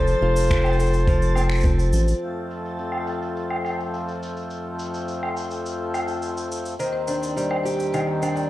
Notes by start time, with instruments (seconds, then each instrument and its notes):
Already playing: analog synth bass F1, steel-string acoustic guitar F3 C4 A4, flugelhorn C5, synth texture A6
0.07 cabasa
0.22 analog synth bass F1, steel-string acoustic guitar F4
0.36 cabasa
0.40 cabasa
0.43 cabasa
0.47 steel-string acoustic guitar C4, finger snap, kick, cabasa
0.54 cabasa
0.58 cabasa
0.61 cabasa, low woodblock
0.65 cabasa
0.73 cabasa
0.79 steel-string acoustic guitar A4, cabasa
0.87 cabasa
0.93 cabasa
1.07 steel-string acoustic guitar F3, kick, cabasa
1.22 cabasa
1.35 steel-string acoustic guitar C4, cabasa, low woodblock
1.49 finger snap, cabasa
1.53 cabasa
1.55 cabasa
1.58 cabasa
1.60 cabasa
1.63 steel-string acoustic guitar C4, kick, cabasa
1.65 cabasa
1.79 cabasa
1.93 analog synth bass A1, cabasa
2.08 cabasa
2.21 harmonium F2 F3 A3 C4, cabasa
2.51 cabasa
2.65 cabasa
2.78 cabasa
2.92 low woodblock
3.07 cabasa
3.22 cabasa
3.37 cabasa
3.50 low woodblock
3.65 cabasa, low woodblock
3.80 cabasa
3.94 cabasa
4.08 cabasa
4.23 cabasa
4.37 cabasa
4.50 cabasa
4.79 cabasa
4.94 cabasa
5.08 cabasa
5.23 low woodblock
5.37 cabasa
5.51 cabasa
5.66 cabasa
5.94 cabasa, low woodblock
6.08 cabasa
6.22 cabasa
6.37 cabasa
6.52 cabasa
6.65 cabasa
6.79 harmonium D#2 D#3 C4, steel-string acoustic guitar D#3, marimba C5, cabasa
6.93 marimba C5
7.08 steel-string acoustic guitar D4, marimba C5, cabasa
7.22 marimba C6, cabasa
7.37 steel-string acoustic guitar G3, marimba C5, cabasa
7.50 marimba C5, low woodblock
7.64 steel-string acoustic guitar G4, marimba C5, cabasa
7.78 marimba G5, cabasa
7.93 steel-string acoustic guitar D#3, marimba C5, cabasa, low woodblock
8.07 marimba D#5
8.22 steel-string acoustic guitar D4, marimba C5, cabasa, low woodblock
8.36 marimba G5, cabasa